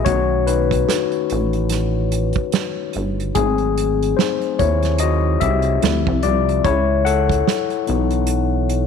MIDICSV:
0, 0, Header, 1, 4, 480
1, 0, Start_track
1, 0, Tempo, 821918
1, 34, Time_signature, 4, 2, 24, 8
1, 5179, End_track
2, 0, Start_track
2, 0, Title_t, "Tine electric piano"
2, 0, Program_c, 0, 4
2, 0, Control_c, 0, 64, 127
2, 27, Note_on_c, 0, 73, 82
2, 30, Note_on_c, 0, 51, 46
2, 33, Note_on_c, 0, 57, 44
2, 35, Note_on_c, 0, 61, 52
2, 38, Note_on_c, 0, 66, 65
2, 41, Control_c, 0, 64, 0
2, 127, Control_c, 0, 64, 127
2, 254, Note_off_c, 0, 73, 0
2, 259, Note_off_c, 0, 66, 0
2, 273, Note_on_c, 0, 71, 70
2, 284, Note_on_c, 0, 63, 55
2, 970, Note_off_c, 0, 71, 0
2, 976, Note_off_c, 0, 63, 0
2, 1929, Note_off_c, 0, 51, 0
2, 1930, Note_off_c, 0, 57, 0
2, 1931, Note_off_c, 0, 61, 0
2, 1955, Note_on_c, 0, 68, 79
2, 1961, Control_c, 0, 64, 0
2, 1962, Note_on_c, 0, 54, 47
2, 1964, Note_on_c, 0, 57, 43
2, 1969, Note_on_c, 0, 60, 55
2, 2057, Control_c, 0, 64, 127
2, 2420, Note_off_c, 0, 60, 0
2, 2433, Note_on_c, 0, 72, 68
2, 2446, Note_on_c, 0, 63, 50
2, 2449, Note_off_c, 0, 68, 0
2, 2655, Note_off_c, 0, 54, 0
2, 2656, Note_off_c, 0, 57, 0
2, 2657, Note_off_c, 0, 72, 0
2, 2664, Note_off_c, 0, 63, 0
2, 2680, Note_on_c, 0, 73, 78
2, 2694, Note_on_c, 0, 64, 60
2, 2901, Note_off_c, 0, 73, 0
2, 2908, Note_off_c, 0, 64, 0
2, 2919, Note_on_c, 0, 75, 83
2, 2932, Note_on_c, 0, 66, 61
2, 3147, Note_off_c, 0, 66, 0
2, 3156, Note_on_c, 0, 76, 77
2, 3164, Note_off_c, 0, 75, 0
2, 3172, Note_on_c, 0, 67, 60
2, 3401, Note_on_c, 0, 53, 48
2, 3401, Note_on_c, 0, 55, 43
2, 3402, Control_c, 0, 64, 0
2, 3405, Note_on_c, 0, 60, 42
2, 3407, Note_on_c, 0, 64, 53
2, 3492, Control_c, 0, 64, 127
2, 3620, Note_off_c, 0, 67, 0
2, 3639, Note_on_c, 0, 74, 78
2, 3647, Note_on_c, 0, 65, 56
2, 3650, Note_off_c, 0, 76, 0
2, 3854, Note_off_c, 0, 53, 0
2, 3854, Note_off_c, 0, 55, 0
2, 3856, Note_off_c, 0, 60, 0
2, 3857, Note_off_c, 0, 64, 0
2, 3865, Note_off_c, 0, 65, 0
2, 3880, Note_on_c, 0, 73, 89
2, 3882, Control_c, 0, 64, 0
2, 3884, Note_off_c, 0, 74, 0
2, 3889, Note_on_c, 0, 64, 69
2, 3978, Control_c, 0, 64, 127
2, 4100, Note_off_c, 0, 73, 0
2, 4105, Note_off_c, 0, 64, 0
2, 4116, Note_on_c, 0, 78, 86
2, 4123, Note_on_c, 0, 69, 68
2, 4592, Note_on_c, 0, 52, 49
2, 4598, Note_on_c, 0, 54, 47
2, 4598, Note_on_c, 0, 59, 46
2, 4602, Note_on_c, 0, 63, 56
2, 4812, Note_off_c, 0, 78, 0
2, 4815, Note_off_c, 0, 69, 0
2, 5179, Note_off_c, 0, 52, 0
2, 5179, Note_off_c, 0, 54, 0
2, 5179, Note_off_c, 0, 59, 0
2, 5179, Note_off_c, 0, 63, 0
2, 5179, End_track
3, 0, Start_track
3, 0, Title_t, "Analog synth bass"
3, 0, Program_c, 1, 38
3, 42, Note_on_c, 1, 35, 100
3, 495, Note_off_c, 1, 35, 0
3, 770, Note_on_c, 1, 33, 84
3, 1358, Note_off_c, 1, 33, 0
3, 1728, Note_on_c, 1, 31, 84
3, 1939, Note_off_c, 1, 31, 0
3, 1965, Note_on_c, 1, 32, 103
3, 2416, Note_off_c, 1, 32, 0
3, 2688, Note_on_c, 1, 39, 83
3, 3138, Note_off_c, 1, 39, 0
3, 3169, Note_on_c, 1, 36, 83
3, 3380, Note_off_c, 1, 36, 0
3, 3408, Note_on_c, 1, 38, 89
3, 3527, Note_off_c, 1, 38, 0
3, 3551, Note_on_c, 1, 36, 81
3, 3634, Note_off_c, 1, 36, 0
3, 3648, Note_on_c, 1, 36, 72
3, 3859, Note_off_c, 1, 36, 0
3, 3888, Note_on_c, 1, 37, 93
3, 4338, Note_off_c, 1, 37, 0
3, 4609, Note_on_c, 1, 35, 82
3, 5179, Note_off_c, 1, 35, 0
3, 5179, End_track
4, 0, Start_track
4, 0, Title_t, "Drums"
4, 33, Note_on_c, 9, 42, 60
4, 35, Note_on_c, 9, 36, 89
4, 92, Note_off_c, 9, 42, 0
4, 94, Note_off_c, 9, 36, 0
4, 277, Note_on_c, 9, 42, 62
4, 336, Note_off_c, 9, 42, 0
4, 415, Note_on_c, 9, 36, 73
4, 423, Note_on_c, 9, 42, 49
4, 474, Note_off_c, 9, 36, 0
4, 481, Note_off_c, 9, 42, 0
4, 517, Note_on_c, 9, 38, 91
4, 523, Note_on_c, 9, 42, 71
4, 576, Note_off_c, 9, 38, 0
4, 582, Note_off_c, 9, 42, 0
4, 653, Note_on_c, 9, 42, 28
4, 711, Note_off_c, 9, 42, 0
4, 757, Note_on_c, 9, 42, 53
4, 816, Note_off_c, 9, 42, 0
4, 895, Note_on_c, 9, 42, 36
4, 953, Note_off_c, 9, 42, 0
4, 990, Note_on_c, 9, 42, 75
4, 1000, Note_on_c, 9, 38, 30
4, 1048, Note_off_c, 9, 42, 0
4, 1058, Note_off_c, 9, 38, 0
4, 1237, Note_on_c, 9, 42, 58
4, 1295, Note_off_c, 9, 42, 0
4, 1360, Note_on_c, 9, 42, 36
4, 1377, Note_on_c, 9, 36, 74
4, 1418, Note_off_c, 9, 42, 0
4, 1435, Note_off_c, 9, 36, 0
4, 1474, Note_on_c, 9, 42, 70
4, 1481, Note_on_c, 9, 38, 93
4, 1532, Note_off_c, 9, 42, 0
4, 1540, Note_off_c, 9, 38, 0
4, 1712, Note_on_c, 9, 42, 49
4, 1771, Note_off_c, 9, 42, 0
4, 1868, Note_on_c, 9, 42, 41
4, 1926, Note_off_c, 9, 42, 0
4, 1957, Note_on_c, 9, 42, 63
4, 1959, Note_on_c, 9, 36, 84
4, 2015, Note_off_c, 9, 42, 0
4, 2018, Note_off_c, 9, 36, 0
4, 2091, Note_on_c, 9, 42, 28
4, 2150, Note_off_c, 9, 42, 0
4, 2205, Note_on_c, 9, 42, 62
4, 2263, Note_off_c, 9, 42, 0
4, 2351, Note_on_c, 9, 42, 49
4, 2409, Note_off_c, 9, 42, 0
4, 2446, Note_on_c, 9, 38, 87
4, 2452, Note_on_c, 9, 42, 71
4, 2504, Note_off_c, 9, 38, 0
4, 2510, Note_off_c, 9, 42, 0
4, 2578, Note_on_c, 9, 42, 28
4, 2637, Note_off_c, 9, 42, 0
4, 2683, Note_on_c, 9, 36, 72
4, 2683, Note_on_c, 9, 42, 55
4, 2741, Note_off_c, 9, 36, 0
4, 2741, Note_off_c, 9, 42, 0
4, 2818, Note_on_c, 9, 42, 39
4, 2825, Note_on_c, 9, 38, 30
4, 2877, Note_off_c, 9, 42, 0
4, 2883, Note_off_c, 9, 38, 0
4, 2911, Note_on_c, 9, 42, 77
4, 2969, Note_off_c, 9, 42, 0
4, 3160, Note_on_c, 9, 42, 57
4, 3163, Note_on_c, 9, 36, 71
4, 3218, Note_off_c, 9, 42, 0
4, 3221, Note_off_c, 9, 36, 0
4, 3284, Note_on_c, 9, 42, 35
4, 3342, Note_off_c, 9, 42, 0
4, 3401, Note_on_c, 9, 42, 72
4, 3408, Note_on_c, 9, 38, 86
4, 3460, Note_off_c, 9, 42, 0
4, 3467, Note_off_c, 9, 38, 0
4, 3544, Note_on_c, 9, 36, 80
4, 3602, Note_off_c, 9, 36, 0
4, 3636, Note_on_c, 9, 42, 53
4, 3695, Note_off_c, 9, 42, 0
4, 3789, Note_on_c, 9, 42, 38
4, 3848, Note_off_c, 9, 42, 0
4, 3881, Note_on_c, 9, 36, 91
4, 3881, Note_on_c, 9, 42, 59
4, 3939, Note_off_c, 9, 36, 0
4, 3939, Note_off_c, 9, 42, 0
4, 4125, Note_on_c, 9, 42, 66
4, 4184, Note_off_c, 9, 42, 0
4, 4260, Note_on_c, 9, 36, 75
4, 4271, Note_on_c, 9, 42, 49
4, 4318, Note_off_c, 9, 36, 0
4, 4329, Note_off_c, 9, 42, 0
4, 4366, Note_on_c, 9, 38, 88
4, 4372, Note_on_c, 9, 42, 80
4, 4424, Note_off_c, 9, 38, 0
4, 4430, Note_off_c, 9, 42, 0
4, 4498, Note_on_c, 9, 42, 27
4, 4556, Note_off_c, 9, 42, 0
4, 4598, Note_on_c, 9, 42, 56
4, 4656, Note_off_c, 9, 42, 0
4, 4733, Note_on_c, 9, 42, 38
4, 4792, Note_off_c, 9, 42, 0
4, 4828, Note_on_c, 9, 42, 79
4, 4886, Note_off_c, 9, 42, 0
4, 5077, Note_on_c, 9, 42, 54
4, 5136, Note_off_c, 9, 42, 0
4, 5179, End_track
0, 0, End_of_file